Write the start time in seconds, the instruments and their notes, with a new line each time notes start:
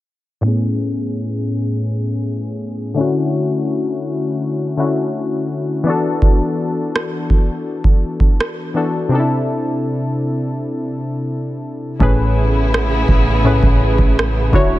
0.41 synth keys A2 A3 B3
0.46 synth keys C#4 G#4
2.94 synth keys D3 A3 C#4
2.99 synth keys E4 F#4
4.77 synth keys D3 A3 C#4 E4 F#4
5.83 synth keys E3 B3 D4
5.88 synth keys F#4 A4
6.22 kick
6.96 cross-stick
7.30 kick
7.84 kick
8.20 kick
8.40 cross-stick
8.74 synth keys E3 B3 D4 F#4 A4
9.09 synth keys C3 C4 D4
9.13 synth keys D#4 A4
9.20 synth keys E4
11.99 808-style bass A1, synth keys A2 A3 C#4 G#4 B4, string section C#3 A3 B3 E4 G#4, kick
12.74 cross-stick
13.08 808-style bass A1, kick
13.44 808-style bass B1, synth keys A2 A3 C#4 G#4 B4
13.63 808-style bass A1, kick
13.98 808-style bass A1, kick
14.19 cross-stick
14.52 808-style bass D1, synth keys D3 A3 E4 F#4 C#5, string section D3 F#3 C#4 E4, kick